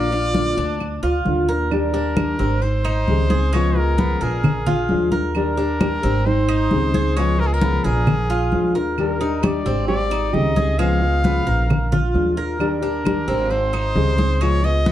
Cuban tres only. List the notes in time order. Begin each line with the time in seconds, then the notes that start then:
Already playing: A#3
0.12 F4
0.58 D4
1.03 F4
1.49 A#4
1.94 D4
2.39 C4
2.85 D#4
3.30 G#4
3.53 G#3
3.98 B3
4.21 A#4
4.66 F4
5.12 A#4
5.57 D4
6.03 C4
6.49 D#4
6.94 G#4
7.17 G#3
7.62 B3
7.84 A#4
8.30 F4
8.75 A#4
9.21 D#4
9.66 C4
10.11 D#4
10.56 G#4
10.79 G#3
11.24 B3
11.47 A#4
11.92 F4
12.37 A#4
12.82 D4
13.28 C4
13.73 D#4
14.18 G#4
14.41 G#3
14.86 B3